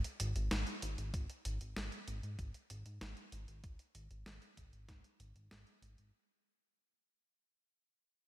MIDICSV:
0, 0, Header, 1, 3, 480
1, 0, Start_track
1, 0, Tempo, 625000
1, 872, Time_signature, 4, 2, 24, 8
1, 6354, End_track
2, 0, Start_track
2, 0, Title_t, "Analog synth bass"
2, 0, Program_c, 0, 38
2, 153, Note_on_c, 0, 32, 92
2, 255, Note_off_c, 0, 32, 0
2, 273, Note_on_c, 0, 32, 80
2, 375, Note_off_c, 0, 32, 0
2, 393, Note_on_c, 0, 32, 96
2, 495, Note_off_c, 0, 32, 0
2, 634, Note_on_c, 0, 32, 90
2, 736, Note_off_c, 0, 32, 0
2, 755, Note_on_c, 0, 32, 80
2, 856, Note_off_c, 0, 32, 0
2, 873, Note_on_c, 0, 32, 96
2, 975, Note_off_c, 0, 32, 0
2, 1116, Note_on_c, 0, 32, 94
2, 1217, Note_off_c, 0, 32, 0
2, 1236, Note_on_c, 0, 32, 76
2, 1337, Note_off_c, 0, 32, 0
2, 1356, Note_on_c, 0, 32, 101
2, 1456, Note_off_c, 0, 32, 0
2, 1595, Note_on_c, 0, 32, 88
2, 1696, Note_off_c, 0, 32, 0
2, 1714, Note_on_c, 0, 44, 78
2, 1815, Note_off_c, 0, 44, 0
2, 1834, Note_on_c, 0, 32, 95
2, 1936, Note_off_c, 0, 32, 0
2, 2074, Note_on_c, 0, 32, 93
2, 2176, Note_off_c, 0, 32, 0
2, 2192, Note_on_c, 0, 44, 80
2, 2295, Note_off_c, 0, 44, 0
2, 2311, Note_on_c, 0, 32, 96
2, 2414, Note_off_c, 0, 32, 0
2, 2552, Note_on_c, 0, 32, 89
2, 2654, Note_off_c, 0, 32, 0
2, 2671, Note_on_c, 0, 32, 78
2, 2774, Note_off_c, 0, 32, 0
2, 2793, Note_on_c, 0, 32, 98
2, 2895, Note_off_c, 0, 32, 0
2, 3034, Note_on_c, 0, 32, 91
2, 3135, Note_off_c, 0, 32, 0
2, 3153, Note_on_c, 0, 32, 77
2, 3255, Note_off_c, 0, 32, 0
2, 3271, Note_on_c, 0, 32, 101
2, 3374, Note_off_c, 0, 32, 0
2, 3513, Note_on_c, 0, 32, 88
2, 3615, Note_off_c, 0, 32, 0
2, 3632, Note_on_c, 0, 32, 77
2, 3734, Note_off_c, 0, 32, 0
2, 3754, Note_on_c, 0, 32, 93
2, 3855, Note_off_c, 0, 32, 0
2, 3993, Note_on_c, 0, 32, 92
2, 4095, Note_off_c, 0, 32, 0
2, 4111, Note_on_c, 0, 32, 76
2, 4214, Note_off_c, 0, 32, 0
2, 4233, Note_on_c, 0, 32, 94
2, 4335, Note_off_c, 0, 32, 0
2, 4470, Note_on_c, 0, 32, 90
2, 4574, Note_off_c, 0, 32, 0
2, 4593, Note_on_c, 0, 32, 79
2, 4695, Note_off_c, 0, 32, 0
2, 6354, End_track
3, 0, Start_track
3, 0, Title_t, "Drums"
3, 34, Note_on_c, 9, 42, 35
3, 111, Note_off_c, 9, 42, 0
3, 152, Note_on_c, 9, 42, 81
3, 229, Note_off_c, 9, 42, 0
3, 274, Note_on_c, 9, 42, 34
3, 351, Note_off_c, 9, 42, 0
3, 393, Note_on_c, 9, 38, 105
3, 393, Note_on_c, 9, 42, 56
3, 470, Note_off_c, 9, 38, 0
3, 470, Note_off_c, 9, 42, 0
3, 512, Note_on_c, 9, 42, 34
3, 589, Note_off_c, 9, 42, 0
3, 633, Note_on_c, 9, 42, 84
3, 710, Note_off_c, 9, 42, 0
3, 754, Note_on_c, 9, 42, 35
3, 830, Note_off_c, 9, 42, 0
3, 874, Note_on_c, 9, 36, 104
3, 874, Note_on_c, 9, 42, 59
3, 950, Note_off_c, 9, 36, 0
3, 951, Note_off_c, 9, 42, 0
3, 995, Note_on_c, 9, 42, 36
3, 1072, Note_off_c, 9, 42, 0
3, 1115, Note_on_c, 9, 42, 85
3, 1191, Note_off_c, 9, 42, 0
3, 1235, Note_on_c, 9, 42, 35
3, 1312, Note_off_c, 9, 42, 0
3, 1355, Note_on_c, 9, 38, 106
3, 1355, Note_on_c, 9, 42, 60
3, 1432, Note_off_c, 9, 38, 0
3, 1432, Note_off_c, 9, 42, 0
3, 1476, Note_on_c, 9, 42, 36
3, 1552, Note_off_c, 9, 42, 0
3, 1594, Note_on_c, 9, 42, 83
3, 1671, Note_off_c, 9, 42, 0
3, 1715, Note_on_c, 9, 42, 35
3, 1792, Note_off_c, 9, 42, 0
3, 1833, Note_on_c, 9, 36, 98
3, 1835, Note_on_c, 9, 42, 55
3, 1910, Note_off_c, 9, 36, 0
3, 1912, Note_off_c, 9, 42, 0
3, 1954, Note_on_c, 9, 42, 35
3, 2030, Note_off_c, 9, 42, 0
3, 2074, Note_on_c, 9, 42, 80
3, 2151, Note_off_c, 9, 42, 0
3, 2194, Note_on_c, 9, 42, 35
3, 2270, Note_off_c, 9, 42, 0
3, 2314, Note_on_c, 9, 38, 101
3, 2314, Note_on_c, 9, 42, 57
3, 2391, Note_off_c, 9, 38, 0
3, 2391, Note_off_c, 9, 42, 0
3, 2433, Note_on_c, 9, 42, 35
3, 2510, Note_off_c, 9, 42, 0
3, 2552, Note_on_c, 9, 42, 83
3, 2629, Note_off_c, 9, 42, 0
3, 2673, Note_on_c, 9, 42, 36
3, 2750, Note_off_c, 9, 42, 0
3, 2793, Note_on_c, 9, 36, 105
3, 2793, Note_on_c, 9, 42, 60
3, 2870, Note_off_c, 9, 36, 0
3, 2870, Note_off_c, 9, 42, 0
3, 2912, Note_on_c, 9, 42, 37
3, 2989, Note_off_c, 9, 42, 0
3, 3032, Note_on_c, 9, 42, 86
3, 3109, Note_off_c, 9, 42, 0
3, 3153, Note_on_c, 9, 42, 35
3, 3230, Note_off_c, 9, 42, 0
3, 3273, Note_on_c, 9, 38, 102
3, 3273, Note_on_c, 9, 42, 61
3, 3350, Note_off_c, 9, 38, 0
3, 3350, Note_off_c, 9, 42, 0
3, 3394, Note_on_c, 9, 42, 36
3, 3471, Note_off_c, 9, 42, 0
3, 3513, Note_on_c, 9, 36, 54
3, 3513, Note_on_c, 9, 42, 84
3, 3589, Note_off_c, 9, 36, 0
3, 3589, Note_off_c, 9, 42, 0
3, 3633, Note_on_c, 9, 42, 36
3, 3710, Note_off_c, 9, 42, 0
3, 3753, Note_on_c, 9, 36, 101
3, 3753, Note_on_c, 9, 38, 50
3, 3753, Note_on_c, 9, 42, 57
3, 3829, Note_off_c, 9, 36, 0
3, 3829, Note_off_c, 9, 38, 0
3, 3829, Note_off_c, 9, 42, 0
3, 3874, Note_on_c, 9, 42, 36
3, 3950, Note_off_c, 9, 42, 0
3, 3993, Note_on_c, 9, 42, 83
3, 4070, Note_off_c, 9, 42, 0
3, 4114, Note_on_c, 9, 42, 35
3, 4191, Note_off_c, 9, 42, 0
3, 4233, Note_on_c, 9, 38, 101
3, 4233, Note_on_c, 9, 42, 57
3, 4310, Note_off_c, 9, 38, 0
3, 4310, Note_off_c, 9, 42, 0
3, 4354, Note_on_c, 9, 42, 35
3, 4431, Note_off_c, 9, 42, 0
3, 4473, Note_on_c, 9, 42, 86
3, 4550, Note_off_c, 9, 42, 0
3, 4594, Note_on_c, 9, 42, 36
3, 4671, Note_off_c, 9, 42, 0
3, 6354, End_track
0, 0, End_of_file